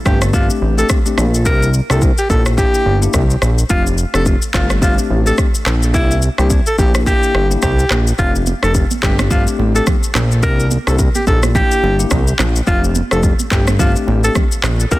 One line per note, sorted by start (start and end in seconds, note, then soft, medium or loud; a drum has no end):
0.05 0.50 G1 medium
0.05 0.27 A3 medium
0.05 0.28 C4 medium
0.05 0.28 D4 medium
0.05 0.28 G4 medium
0.05 0.20 G4 medium
0.05 kick loud
0.05 cross-stick medium
0.05 shaker medium
0.21 cross-stick medium
0.21 shaker medium
0.33 0.74 A3 medium
0.33 0.74 C4 medium
0.33 0.74 D4 medium
0.33 0.48 F4 medium
0.33 0.74 G4 loud
0.33 kick loud
0.33 shaker medium
0.50 shaker medium
0.62 0.84 A1 medium
0.78 0.98 A3 medium
0.78 0.98 C4 medium
0.78 0.98 D4 medium
0.78 0.98 G4 medium
0.78 0.88 A4 medium
0.78 shaker medium
0.89 kick medium
0.89 cross-stick medium
0.89 shaker medium
1.06 1.26 A3 medium
1.06 1.26 C4 medium
1.06 1.26 D4 medium
1.06 1.26 G4 medium
1.06 shaker medium
1.18 1.47 A#1 medium
1.18 cross-stick medium
1.18 shaker soft
1.34 shaker soft
1.45 1.81 C2 loud
1.45 1.68 A#3 medium
1.45 1.68 D4 medium
1.45 1.68 E4 medium
1.45 1.68 G4 loud
1.45 1.70 A#4 loud
1.45 kick loud
1.45 shaker medium
1.63 shaker medium
1.74 shaker medium
1.90 2.12 C2 loud
1.90 2.10 A#3 medium
1.90 2.10 D4 medium
1.90 2.10 E4 medium
1.90 2.10 G4 medium
1.90 2.00 A4 medium
1.90 cross-stick medium
1.90 shaker medium
2.02 kick medium
2.02 shaker medium
2.18 2.28 G4 medium
2.18 shaker medium
2.29 2.65 A#1 medium
2.29 2.52 A#3 medium
2.29 2.52 D4 medium
2.29 2.52 E4 medium
2.29 2.52 G4 medium
2.29 2.44 A4 medium
2.29 kick medium
2.29 shaker medium
2.46 cross-stick loud
2.46 shaker medium
2.57 2.98 A#3 medium
2.57 2.98 D4 medium
2.57 2.98 E4 medium
2.57 2.98 G4 loud
2.57 3.00 G4 loud
2.57 kick loud
2.57 shaker medium
2.74 shaker medium
2.86 3.08 G1 medium
3.02 3.22 A#3 medium
3.02 3.22 D4 medium
3.02 3.22 E4 medium
3.02 3.22 G4 medium
3.02 shaker medium
3.14 3.36 C2 loud
3.14 kick medium
3.14 cross-stick medium
3.14 shaker medium
3.30 shaker medium
3.42 3.64 A#1 medium
3.42 cross-stick medium
3.42 shaker soft
3.58 shaker soft
3.69 4.05 F1 loud
3.69 3.92 A3 medium
3.69 3.92 C4 medium
3.69 3.92 D4 medium
3.69 3.84 F4 loud
3.69 3.92 G4 loud
3.69 kick loud
3.69 shaker medium
3.87 shaker medium
3.98 shaker soft
4.14 4.36 F1 loud
4.14 4.34 A3 medium
4.14 4.34 C4 medium
4.14 4.34 D4 medium
4.14 4.34 G4 medium
4.14 4.25 A4 medium
4.14 cross-stick medium
4.14 shaker soft
4.26 kick medium
4.26 shaker medium
4.42 shaker medium
4.54 4.98 G1 loud
4.54 4.76 A3 medium
4.54 4.76 C4 medium
4.54 4.76 D4 medium
4.54 4.68 F4 medium
4.54 4.76 G4 medium
4.54 kick medium
4.54 cross-stick loud
4.54 clap medium
4.54 shaker medium
4.70 cross-stick medium
4.70 shaker medium
4.82 5.22 A3 medium
4.82 5.22 C4 medium
4.82 5.23 D4 medium
4.82 4.96 F4 medium
4.82 5.23 G4 loud
4.82 kick loud
4.82 shaker medium
4.98 shaker medium
5.10 5.32 A1 medium
5.26 5.46 A3 medium
5.26 5.46 C4 medium
5.26 5.46 D4 medium
5.26 5.46 G4 medium
5.26 5.37 A4 medium
5.26 shaker medium
5.38 kick medium
5.38 cross-stick medium
5.38 shaker medium
5.55 shaker medium
5.66 5.96 A#1 loud
5.66 cross-stick medium
5.66 clap medium
5.66 shaker soft
5.83 shaker soft
5.94 6.29 C2 loud
5.94 6.16 A#3 loud
5.94 6.16 D4 medium
5.94 6.16 E4 medium
5.94 6.18 E4 loud
5.94 6.17 G4 loud
5.94 kick loud
5.94 shaker medium
6.11 shaker medium
6.22 shaker medium
6.38 6.61 C2 loud
6.38 6.58 A#3 medium
6.38 6.59 D4 medium
6.38 6.59 E4 medium
6.38 6.59 G4 medium
6.38 6.49 G4 medium
6.38 cross-stick medium
6.38 shaker soft
6.50 kick medium
6.50 shaker medium
6.66 6.77 A4 medium
6.66 shaker soft
6.78 7.13 A#1 medium
6.78 7.01 A#3 medium
6.78 7.01 D4 medium
6.78 7.01 E4 medium
6.78 7.01 G4 medium
6.78 6.93 G4 medium
6.78 kick loud
6.78 shaker medium
6.95 cross-stick medium
6.95 shaker medium
7.06 7.47 A#3 medium
7.06 7.47 D4 medium
7.06 7.47 E4 medium
7.06 7.47 G4 loud
7.06 7.48 G4 loud
7.06 kick loud
7.06 shaker medium
7.23 shaker medium
7.35 7.57 G1 medium
7.35 cross-stick medium
7.51 7.71 A#3 medium
7.51 7.71 D4 medium
7.51 7.71 E4 medium
7.51 7.71 G4 medium
7.51 shaker medium
7.62 7.85 C2 loud
7.62 8.05 G4 medium
7.62 kick medium
7.62 cross-stick medium
7.62 shaker medium
7.79 shaker medium
7.91 8.13 A#1 medium
7.91 cross-stick medium
7.91 clap medium
8.07 shaker soft
8.18 8.54 F1 loud
8.18 8.41 A3 medium
8.18 8.41 C4 medium
8.18 8.41 D4 medium
8.18 8.33 F4 loud
8.18 8.41 G4 loud
8.18 kick loud
8.18 shaker medium
8.35 shaker medium
8.46 high conga medium
8.46 shaker medium
8.63 8.85 F1 loud
8.63 8.83 A3 medium
8.63 8.83 C4 medium
8.63 8.83 D4 medium
8.63 8.83 G4 medium
8.63 8.73 A4 medium
8.63 cross-stick medium
8.63 shaker medium
8.75 kick medium
8.75 shaker medium
8.91 high conga medium
8.91 shaker medium
9.02 9.47 G1 medium
9.02 9.25 A3 medium
9.02 9.25 C4 medium
9.02 9.25 D4 medium
9.02 9.25 G4 medium
9.02 9.17 G4 medium
9.02 kick medium
9.02 cross-stick medium
9.02 clap medium
9.02 shaker medium
9.19 cross-stick loud
9.19 high conga medium
9.19 shaker medium
9.30 9.71 A3 medium
9.30 9.71 C4 medium
9.30 9.71 D4 medium
9.30 9.45 F4 medium
9.30 9.71 G4 loud
9.30 kick loud
9.30 low conga medium
9.30 shaker medium
9.47 shaker medium
9.59 9.81 A1 medium
9.59 high conga medium
9.75 9.95 A3 medium
9.75 9.95 C4 medium
9.75 9.95 D4 medium
9.75 9.95 G4 medium
9.75 9.86 A4 medium
9.75 shaker medium
9.87 kick medium
9.87 cross-stick medium
9.87 high conga medium
9.87 low conga medium
9.87 shaker medium
10.03 shaker medium
10.15 10.45 A#1 medium
10.15 cross-stick medium
10.15 clap medium
10.15 high conga medium
10.15 low conga medium
10.15 shaker medium
10.31 shaker soft
10.43 10.78 C2 loud
10.43 10.65 A#3 medium
10.43 10.65 D4 medium
10.43 10.65 E4 medium
10.43 10.65 G4 loud
10.43 10.67 A#4 loud
10.43 kick loud
10.43 shaker medium
10.60 shaker medium
10.71 high conga medium
10.71 shaker soft
10.87 11.09 C2 loud
10.87 11.07 A#3 medium
10.87 11.07 D4 medium
10.87 11.07 E4 medium
10.87 11.07 G4 medium
10.87 10.98 A4 medium
10.87 cross-stick medium
10.87 shaker medium
10.99 kick medium
10.99 shaker medium
11.15 11.25 G4 medium
11.15 high conga medium
11.15 shaker medium
11.27 11.62 A#1 loud
11.27 11.49 A#3 medium
11.27 11.49 D4 medium
11.27 11.49 E4 medium
11.27 11.49 G4 medium
11.27 11.41 A4 medium
11.27 kick loud
11.27 shaker medium
11.43 cross-stick medium
11.43 high conga medium
11.43 shaker medium
11.55 11.95 A#3 loud
11.55 11.95 D4 medium
11.55 11.96 E4 medium
11.55 11.96 G4 loud
11.55 11.97 G4 loud
11.55 kick loud
11.55 low conga medium
11.55 shaker medium
11.71 shaker medium
11.83 12.05 G1 medium
11.83 high conga medium
11.99 12.19 A#3 medium
11.99 12.19 D4 medium
11.99 12.19 E4 medium
11.99 12.19 G4 medium
11.99 shaker medium
12.11 12.33 C2 loud
12.11 kick medium
12.11 cross-stick medium
12.11 high conga medium
12.11 low conga medium
12.11 shaker medium
12.28 shaker medium
12.39 12.61 A#1 loud
12.39 cross-stick medium
12.39 clap medium
12.39 high conga medium
12.39 low conga medium
12.39 shaker medium
12.56 shaker soft
12.67 13.02 F1 loud
12.67 12.89 A3 medium
12.67 12.89 C4 medium
12.67 12.89 D4 medium
12.67 12.81 F4 loud
12.67 12.89 G4 loud
12.67 kick loud
12.67 shaker medium
12.84 shaker medium
12.95 high conga medium
12.95 shaker soft
13.11 13.34 F1 loud
13.11 13.31 A3 medium
13.11 13.31 C4 medium
13.11 13.32 D4 medium
13.11 13.32 G4 medium
13.11 13.22 A4 medium
13.11 cross-stick medium
13.11 shaker soft
13.23 kick medium
13.23 shaker medium
13.39 high conga medium
13.39 shaker medium
13.51 13.96 G1 loud
13.51 13.73 A3 medium
13.51 13.73 C4 medium
13.51 13.74 D4 medium
13.51 13.74 G4 medium
13.51 13.65 G4 medium
13.51 kick medium
13.51 cross-stick medium
13.51 clap medium
13.51 shaker medium
13.67 cross-stick medium
13.67 high conga medium
13.67 shaker medium
13.79 14.20 A3 medium
13.79 14.20 C4 medium
13.79 14.20 D4 medium
13.79 13.94 F4 medium
13.79 14.20 G4 loud
13.79 kick loud
13.79 low conga medium
13.79 shaker medium
13.96 shaker medium
14.08 14.30 A1 medium
14.08 high conga medium
14.23 14.43 A3 medium
14.23 14.44 C4 medium
14.23 14.44 D4 medium
14.23 14.44 G4 medium
14.23 14.34 A4 medium
14.23 shaker medium
14.35 kick medium
14.35 cross-stick medium
14.35 high conga medium
14.35 low conga medium
14.35 shaker medium
14.52 shaker medium
14.63 14.86 A#1 medium
14.63 cross-stick medium
14.63 clap medium
14.63 high conga medium
14.63 low conga medium
14.63 shaker medium
14.80 shaker soft
14.91 14.99 C2 loud
14.91 14.99 A#3 medium
14.91 14.99 D4 medium
14.91 14.99 E4 medium
14.91 14.99 G4 loud
14.91 14.99 A#4 loud
14.91 kick loud
14.91 shaker medium